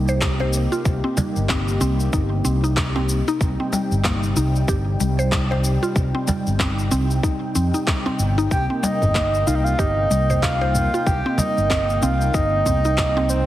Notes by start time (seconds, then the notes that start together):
Already playing: C2 C3 A#3 D#4 G4
0.08 C5, shaker
0.21 kick, clap, shaker
0.40 C5, cajon slap
0.53 shaker
0.72 F4, shaker
0.85 C2, kick, shaker
1.04 C4
1.17 G3, cajon bass, cajon slap, shaker
1.36 G1, shaker
1.49 C4, kick, cajon slap, clap, shaker
1.68 shaker
1.81 C2 C4, cajon slap, shaker
2.00 shaker
2.13 G1 D#4, kick, shaker
2.45 C2 C4, shaker
2.64 D#4, shaker
2.77 kick, clap, shaker
2.96 C4, cajon slap
3.09 shaker
3.28 D#4, shaker
3.40 C2 G3 D#4 G5, kick, shaker
3.60 C4
3.73 G3, cajon slap, shaker
3.91 G1, shaker
4.04 A#3, kick, cajon slap, clap, shaker
4.23 shaker
4.36 C2 D#4, shaker
4.55 shaker
4.68 G1 G4, kick, shaker
5.00 C2 G3, shaker
5.19 C5, shaker
5.32 kick, clap, shaker
5.51 C5, cajon slap
5.64 shaker
5.83 F4, shaker
5.96 C2, kick, shaker
6.15 C4
6.28 G3, cajon bass, cajon slap, shaker
6.46 G1, shaker
6.59 C4, kick, cajon slap, clap, shaker
6.79 shaker
6.91 C2 C4, cajon slap, shaker
7.11 shaker
7.23 D#4, kick, shaker
7.55 F2 C4, shaker
7.74 D#4, shaker
7.87 kick, clap, shaker
8.06 C4, cajon slap
8.19 G1, shaker
8.38 D#4, shaker
8.51 C2 A#3 G5, kick, shaker
8.70 C4
8.83 G3 D#5, cajon slap, shaker
9.02 G1, mid tom, shaker
9.15 A#3, kick, cajon slap, clap, shaker
9.34 shaker
9.47 C2 D#4 F5, shaker
9.55 D#5
9.64 F5, shaker
9.79 G1 G4 D#5, kick, shaker
10.10 C2 G3, shaker
10.30 C5, mid tom, shaker
10.43 F5, kick, clap, shaker
10.61 C5, cajon slap
10.75 mid tom, shaker
10.94 F4, shaker
11.06 C2 G5, kick, shaker
11.26 C4
11.38 G3 D#5, cajon bass, cajon slap, shaker
11.57 G1, shaker
11.70 C4, kick, cajon slap, clap, shaker
11.90 shaker
12.02 C2 C4 F5, cajon slap, shaker
12.21 shaker
12.34 G1 D#4 D#5, kick, shaker
12.66 C2 C4, mid tom, shaker
12.85 D#4, shaker
12.98 kick, clap, shaker
13.17 C4, cajon slap
13.30 C5, shaker